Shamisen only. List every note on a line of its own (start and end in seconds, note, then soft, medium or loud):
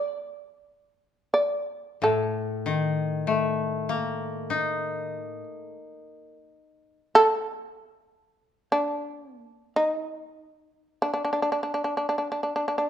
0.00 1.32 D5 medium
1.34 1.99 D5 medium
2.04 5.43 A4 soft
7.15 8.69 A4 medium
8.72 9.40 D4 medium
9.40 9.73 A#3 medium
9.76 11.00 D#4 medium
11.02 11.12 D4 medium
11.14 11.23 D4 soft
11.25 11.32 D4 soft
11.33 11.41 D4 soft
11.42 11.51 D4 soft
11.52 11.62 D4 soft
11.63 11.73 D4 soft
11.74 11.83 D4 soft
11.84 11.96 D4 soft
11.97 12.08 D4 soft
12.09 12.17 D4 soft
12.18 12.31 D4 soft
12.32 12.42 D4 soft
12.43 12.55 D4 soft
12.56 12.67 D4 soft
12.68 12.77 D4 soft
12.78 12.88 D4 soft